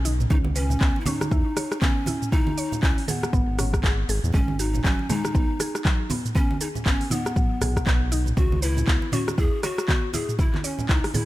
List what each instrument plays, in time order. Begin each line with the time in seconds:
Already playing: analog synth bass B1
0.05 synth pluck D#4, open hi-hat, muted conga, shaker
0.20 mid tom, low conga, shaker
0.30 analog synth bass C#2, synth pluck C#4, pan flute D#4, kick, muted conga, high conga, shaker
0.44 high conga
0.56 pan flute C#4, synth pluck B4, open hi-hat, shaker
0.70 muted conga, low conga, shaker
0.81 analog synth bass C#2, synth pluck B3, kick, clap, shaker
0.96 muted conga
1.01 pan flute E4
1.05 synth pluck C#4, pan flute D#4, mid tom, open hi-hat, high conga, low conga, shaker
1.21 cross-stick, muted conga, high conga, shaker
1.31 analog synth bass E2, synth pluck E4, kick, shaker
1.57 synth pluck C#5, cross-stick, open hi-hat, muted conga, shaker
1.72 cross-stick, shaker
1.81 synth pluck B3, pan flute C#4, kick, clap, muted conga, high conga, shaker
2.06 synth pluck E4, open hi-hat, muted conga, high conga, low conga, shaker
2.22 mid tom, shaker
2.32 pan flute D#4, synth pluck E4, kick, muted conga, high conga, shaker
2.47 high conga
2.58 synth pluck C#5, open hi-hat, shaker
2.72 muted conga, low conga, shaker
2.82 analog synth bass C#2, pan flute C#4, synth pluck E4, kick, clap, shaker
2.98 open hi-hat, muted conga
3.08 pan flute B3, synth pluck G#4, mid tom, open hi-hat, high conga, low conga, shaker
3.23 cross-stick, muted conga, high conga, shaker
3.33 analog synth bass G#1, synth pluck B3, kick, mid tom, shaker
3.58 synth pluck C#4, cross-stick, open hi-hat, muted conga, low conga, shaker
3.73 kick, cross-stick, shaker
3.84 synth pluck G#4, kick, clap, muted conga, shaker
4.09 analog synth bass G#1, synth pluck G#4, open hi-hat, muted conga, shaker
4.24 analog synth bass E2, mid tom, low conga, shaker
4.33 analog synth bass G#1, synth pluck G#3, pan flute C#4, kick, muted conga, high conga, shaker
4.48 high conga
4.59 pan flute D#4, synth pluck F#4, open hi-hat, shaker
4.74 muted conga, low conga, shaker
4.84 analog synth bass G#1, synth pluck F#3, pan flute C#4, kick, clap, shaker
4.99 muted conga
5.09 synth pluck G#3, pan flute D#4, mid tom, open hi-hat, high conga, low conga, shaker
5.24 cross-stick, muted conga, high conga, shaker
5.35 analog synth bass B1, synth pluck B3, kick, shaker
5.60 synth pluck G#4, cross-stick, open hi-hat, muted conga, shaker
5.75 cross-stick, shaker
5.85 synth pluck F#3, kick, clap, muted conga, high conga, shaker
6.10 synth pluck B3, open hi-hat, muted conga, high conga, low conga, shaker
6.25 mid tom, shaker
6.35 synth pluck B3, pan flute C#4, kick, muted conga, high conga, shaker
6.51 high conga
6.61 pan flute D#4, synth pluck G#4, open hi-hat, shaker
6.75 muted conga, low conga, shaker
6.86 analog synth bass G#1, synth pluck B3, pan flute C#4, kick, clap, shaker
7.01 open hi-hat, muted conga
7.10 pan flute B3, synth pluck D#4, mid tom, open hi-hat, high conga, low conga, shaker
7.25 cross-stick, muted conga, high conga, shaker
7.36 synth pluck F#3, kick, mid tom, shaker
7.61 analog synth bass B1, synth pluck G#4, cross-stick, open hi-hat, muted conga, low conga, shaker
7.76 kick, cross-stick, shaker
7.86 synth pluck B3, kick, clap, muted conga, shaker
8.12 synth pluck D#4, open hi-hat, muted conga, shaker
8.26 mid tom, low conga, shaker
8.37 analog synth bass C#2, synth pluck C#4, pan flute F#4, kick, muted conga, high conga, shaker
8.52 high conga
8.62 pan flute E4, synth pluck B4, open hi-hat, shaker
8.77 muted conga, low conga, shaker
8.87 analog synth bass C#2, synth pluck B3, kick, clap, shaker
9.02 muted conga
9.12 synth pluck C#4, pan flute F#4, mid tom, open hi-hat, high conga, low conga, shaker
9.28 cross-stick, muted conga, high conga, shaker
9.38 analog synth bass E2, synth pluck E4, pan flute G#4, kick, shaker
9.63 pan flute F#4, synth pluck C#5, cross-stick, open hi-hat, muted conga, shaker
9.78 cross-stick, shaker
9.88 synth pluck B3, kick, clap, muted conga, high conga, shaker
10.13 synth pluck E4, pan flute G#4, open hi-hat, muted conga, high conga, low conga, shaker
10.29 mid tom, shaker
10.38 pan flute E4, synth pluck E4, kick, muted conga, high conga, shaker
10.54 clap, high conga
10.64 pan flute C#4, synth pluck C#5, open hi-hat, shaker
10.79 muted conga, low conga, shaker
10.89 analog synth bass C#2, pan flute D#4, synth pluck E4, kick, clap, shaker
11.04 cross-stick, open hi-hat, muted conga
11.14 pan flute E4, synth pluck G#4, mid tom, open hi-hat, high conga, low conga, shaker